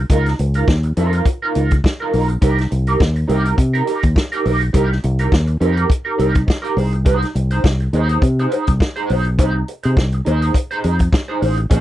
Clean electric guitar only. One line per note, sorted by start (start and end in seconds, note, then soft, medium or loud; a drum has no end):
0.10 0.31 D#4 medium
0.10 0.27 F4 medium
0.10 0.26 A#4 loud
0.27 muted clean electric guitar stroke soft
0.39 muted clean electric guitar stroke soft
0.55 0.66 D#4 medium
0.55 0.66 F4 medium
0.55 0.67 A#4 medium
0.67 muted clean electric guitar stroke soft
0.84 muted clean electric guitar stroke soft
0.97 1.14 D#4 medium
0.97 1.13 F4 loud
0.97 1.12 A#4 medium
1.13 1.26 D#4 medium
1.13 1.27 F4 medium
1.13 1.27 A#4 medium
1.27 muted clean electric guitar stroke soft
1.42 1.54 D#4 medium
1.42 1.55 F4 medium
1.42 1.56 A#4 medium
1.55 1.72 D#4 medium
1.55 1.72 F4 medium
1.55 1.71 A#4 soft
1.72 muted clean electric guitar stroke soft
1.84 muted clean electric guitar stroke soft
2.00 2.11 D#4 medium
2.00 2.12 F4 medium
2.00 2.13 A#4 medium
2.13 2.30 D#4 medium
2.13 2.29 F4 medium
2.13 2.28 A#4 medium
2.29 muted clean electric guitar stroke soft
2.41 2.63 D#4 medium
2.41 2.59 G4 medium
2.41 2.57 A#4 loud
2.59 muted clean electric guitar stroke soft
2.71 muted clean electric guitar stroke soft
2.87 3.00 D#4 medium
2.87 3.01 G4 medium
2.87 3.01 A#4 medium
3.01 muted clean electric guitar stroke soft
3.16 muted clean electric guitar stroke soft
3.28 3.45 D#4 medium
3.28 3.44 G4 loud
3.28 3.43 A#4 loud
3.44 3.55 D#4 medium
3.44 3.56 G4 medium
3.44 3.56 A#4 medium
3.56 muted clean electric guitar stroke medium
3.73 3.84 D#4 medium
3.73 3.86 G4 medium
3.73 3.87 A#4 medium
3.86 4.04 D#4 medium
3.86 4.03 G4 medium
3.86 4.02 A#4 medium
4.03 muted clean electric guitar stroke soft
4.15 muted clean electric guitar stroke soft
4.32 4.44 D#4 medium
4.32 4.45 G4 medium
4.32 4.46 A#4 medium
4.45 4.62 D#4 medium
4.45 4.62 G4 medium
4.45 4.61 A#4 medium
4.62 muted clean electric guitar stroke soft
4.73 4.95 D#4 medium
4.73 4.90 G4 loud
4.73 4.89 A#4 loud
4.90 muted clean electric guitar stroke medium
5.04 muted clean electric guitar stroke soft
5.19 5.30 D#4 medium
5.19 5.31 G4 medium
5.19 5.31 A#4 medium
5.31 muted clean electric guitar stroke soft
5.47 muted clean electric guitar stroke soft
5.60 5.76 D#4 loud
5.60 5.76 G4 loud
5.60 5.75 A#4 loud
5.76 5.87 D#4 soft
5.76 5.88 G4 medium
5.76 5.89 A#4 medium
5.89 muted clean electric guitar stroke soft
6.05 6.17 D#4 soft
6.05 6.17 G4 medium
6.05 6.18 A#4 medium
6.18 6.40 D#4 medium
6.18 6.34 G4 medium
6.18 6.33 A#4 loud
6.34 muted clean electric guitar stroke soft
6.46 muted clean electric guitar stroke soft
6.62 6.75 D#4 medium
6.62 6.77 G4 medium
6.62 6.77 A#4 medium
6.76 6.94 D#4 medium
6.76 6.93 G#4 medium
6.76 6.92 C5 medium
6.93 muted clean electric guitar stroke soft
7.05 7.27 D#4 medium
7.05 7.22 G#4 medium
7.05 7.21 C5 medium
7.23 muted clean electric guitar stroke medium
7.35 muted clean electric guitar stroke soft
7.51 7.62 D#4 medium
7.51 7.63 G#4 medium
7.51 7.63 C5 medium
7.64 muted clean electric guitar stroke soft
7.81 muted clean electric guitar stroke soft
7.94 8.10 D#4 loud
7.94 8.09 G#4 medium
7.94 8.08 C5 loud
8.09 8.21 D#4 medium
8.09 8.21 G#4 medium
8.09 8.22 C5 medium
8.22 muted clean electric guitar stroke soft
8.39 8.50 D#4 medium
8.39 8.51 G#4 medium
8.39 8.52 C5 medium
8.51 8.69 D#4 medium
8.51 8.69 G#4 medium
8.51 8.67 C5 medium
8.68 muted clean electric guitar stroke soft
8.80 muted clean electric guitar stroke soft
8.96 9.08 D#4 medium
8.96 9.09 G#4 medium
8.96 9.09 C5 loud
9.09 9.27 D#4 medium
9.09 9.26 G#4 medium
9.09 9.24 C5 medium
9.26 muted clean electric guitar stroke medium
9.38 9.60 D#4 medium
9.38 9.54 G#4 medium
9.38 9.53 C5 medium
9.54 muted clean electric guitar stroke medium
9.68 muted clean electric guitar stroke soft
9.83 9.95 D#4 medium
9.83 9.96 G#4 medium
9.83 9.97 C5 medium
9.96 muted clean electric guitar stroke soft
10.13 muted clean electric guitar stroke soft
10.25 10.42 D#4 medium
10.25 10.41 G#4 medium
10.25 10.40 C5 medium
10.41 10.54 D#4 medium
10.41 10.54 G#4 medium
10.41 10.55 C5 medium
10.55 muted clean electric guitar stroke medium
10.71 10.82 D#4 medium
10.71 10.83 G#4 medium
10.71 10.84 C5 medium
10.83 11.01 D#4 medium
10.83 10.99 G#4 medium
10.83 10.98 C5 medium
10.99 muted clean electric guitar stroke medium
11.12 muted clean electric guitar stroke soft
11.28 11.40 D#4 medium
11.28 11.41 G#4 medium
11.28 11.42 C5 loud
11.41 11.59 D#4 medium
11.41 11.58 G#4 medium
11.41 11.56 C5 medium
11.58 muted clean electric guitar stroke medium
11.70 11.80 C#4 medium
11.70 11.80 G#4 medium
11.70 11.80 C5 medium